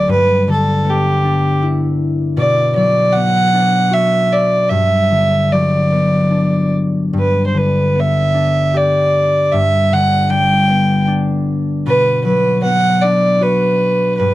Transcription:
0.00 0.13 D2 soft
0.00 0.13 D3 soft
0.00 0.13 F#3 soft
0.00 2.60 A3 soft
0.00 0.21 C4 soft
0.08 2.43 G2 medium
0.08 0.46 B4 medium
0.48 2.43 D3 soft
0.52 0.92 A4 medium
0.85 3.14 B3 soft
0.90 1.64 G4 medium
1.25 3.53 D4 soft
1.62 4.24 E4 soft
2.37 4.77 B2 medium
2.37 2.73 D5 medium
2.76 4.77 F#3 soft
2.76 3.14 D5 medium
3.13 5.92 B3 soft
3.13 3.95 F#5 medium
3.54 6.30 D4 soft
3.91 4.77 F#4 medium
3.91 4.34 E5 medium
4.33 4.71 D5 medium
4.70 7.12 G2 medium
4.70 5.54 E5 medium
5.11 7.19 D3 soft
5.52 7.19 F#3 soft
5.52 6.74 D5 medium
5.92 7.95 B3 soft
6.31 8.33 D4 soft
7.13 9.52 G2 soft
7.19 7.46 B4 medium
7.47 7.59 C5 soft
7.54 9.58 D3 soft
7.54 8.01 B4 medium
7.95 10.69 B3 soft
8.00 8.78 E5 medium
8.34 11.07 D4 soft
8.74 11.09 G4 soft
8.74 9.54 D5 medium
9.52 11.91 G2 medium
9.52 9.95 E5 medium
9.92 11.91 D3 soft
9.92 10.31 F#5 medium
10.30 11.91 G3 soft
10.30 11.08 G5 medium
10.70 12.63 B3 soft
11.07 13.04 D4 soft
11.86 14.26 B2 medium
11.86 12.23 B4 medium
12.25 14.26 F#3 soft
12.25 12.61 B4 medium
12.63 14.34 B3 medium
12.63 13.03 F#5 medium
13.02 14.34 D4 soft
13.02 13.43 D5 medium
13.41 14.25 F#4 soft
13.41 14.17 B4 medium
14.18 14.34 G2 medium
14.18 14.34 B4 medium

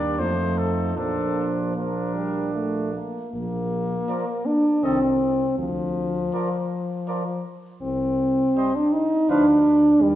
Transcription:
0.00 0.21 D#2 soft
0.00 0.21 G3 soft
0.00 0.21 A#3 soft
0.00 0.18 D4 soft
0.00 0.20 D5 medium
0.19 0.96 F2 soft
0.19 0.96 F3 soft
0.19 0.96 A3 soft
0.19 0.98 D#4 soft
0.19 0.59 C5 medium
0.58 0.97 A4 soft
0.96 2.96 A#1 soft
0.96 1.74 F3 soft
0.96 1.74 A#3 soft
0.96 1.75 D4 soft
0.96 1.47 A4 medium
1.76 2.13 F3 soft
1.76 2.98 A#3 soft
1.76 2.98 D4 soft
1.76 2.51 A#4 soft
2.15 2.54 G3 soft
2.54 2.93 A3 soft
2.93 3.32 A#3 soft
3.33 3.97 A#1 medium
3.33 4.47 A#3 medium
4.08 4.25 F3 soft
4.08 4.25 A#4 soft
4.08 4.24 D5 soft
4.46 4.85 D4 medium
4.83 5.46 C2 medium
4.83 4.99 D#3 soft
4.83 5.58 C4 medium
4.83 5.00 A4 soft
4.83 4.99 D#5 soft
5.58 6.21 D2 medium
5.58 7.41 F3 medium
6.33 6.49 F3 soft
6.33 6.49 A#4 soft
6.33 6.49 D5 soft
7.07 7.24 F3 soft
7.07 7.23 A#4 soft
7.07 7.23 D5 soft
7.82 8.43 C2 medium
7.82 8.77 C4 medium
8.56 8.72 G3 soft
8.56 8.72 C5 soft
8.56 8.73 D#5 soft
8.75 8.94 D4 medium
8.92 9.31 D#4 medium
9.29 9.89 D2 medium
9.29 9.45 F3 soft
9.29 10.03 D4 medium
9.29 9.45 B4 soft
9.29 9.46 F5 soft
10.02 10.15 D#2 medium
10.02 10.15 G3 medium

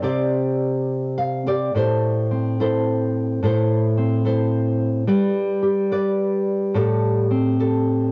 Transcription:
0.02 1.71 C3 medium
0.02 1.45 C4 medium
0.02 1.46 G4 medium
0.02 1.17 D5 medium
1.18 1.46 F5 medium
1.46 1.75 C4 soft
1.46 1.72 G4 medium
1.46 1.72 D5 medium
1.74 3.41 A2 medium
1.74 2.60 E4 soft
1.74 2.60 A4 soft
1.74 2.61 C5 medium
2.31 3.40 C4 soft
2.60 3.40 E4 soft
2.60 3.44 A4 soft
2.60 3.41 C5 medium
3.43 5.07 A2 medium
3.43 4.24 E4 medium
3.43 4.25 A4 medium
3.43 4.25 C5 medium
3.97 5.04 C4 medium
4.25 5.04 E4 soft
4.25 5.08 A4 soft
4.25 5.05 C5 soft
5.07 7.30 G3 medium
5.07 5.91 B4 medium
5.07 5.92 D5 medium
5.63 6.71 G4 medium
5.92 6.72 B4 soft
5.92 6.72 D5 medium
6.74 8.12 A2 medium
6.74 7.58 G4 medium
6.74 7.59 A4 medium
7.31 8.12 C4 medium
7.59 8.12 G4 soft
7.59 8.12 A4 medium

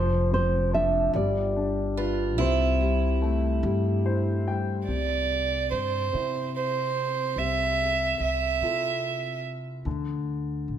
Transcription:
0.00 1.10 F1 loud
0.00 1.10 F3 medium
0.00 0.33 C5 medium
0.31 1.11 C4 medium
0.31 0.71 C5 medium
0.73 1.13 D4 medium
0.73 1.15 E5 medium
1.14 2.39 G1 medium
1.14 2.35 G3 medium
1.14 2.40 D5 medium
1.56 2.36 D4 soft
1.97 2.76 F4 medium
1.97 2.37 B4 medium
2.38 3.59 C2 loud
2.38 4.84 C3 medium
2.38 4.37 E4 medium
2.38 4.02 C5 medium
2.81 3.63 G3 soft
3.22 4.84 A3 medium
3.63 4.84 G2 medium
3.63 4.46 G3 soft
4.06 4.86 E4 soft
4.06 4.44 C5 medium
4.47 4.87 G3 soft
4.47 4.86 G5 medium
4.87 5.67 C2 medium
4.87 7.34 C3 soft
4.87 5.67 D5 medium
5.70 6.10 G2 medium
5.70 6.50 C5 medium
6.13 7.34 C3 medium
6.13 7.34 C4 soft
6.13 7.34 E4 soft
6.13 7.34 C5 soft
6.56 7.40 C5 medium
7.36 8.16 C2 medium
7.36 9.82 C3 soft
7.36 8.20 E5 medium
8.19 8.58 C2 medium
8.19 9.41 E5 medium
8.61 9.82 C3 medium
8.61 9.83 E4 soft
8.61 9.83 F4 soft
8.61 9.83 A4 soft
9.85 10.64 D2 medium
9.85 10.78 D3 medium
10.68 10.78 A1 medium

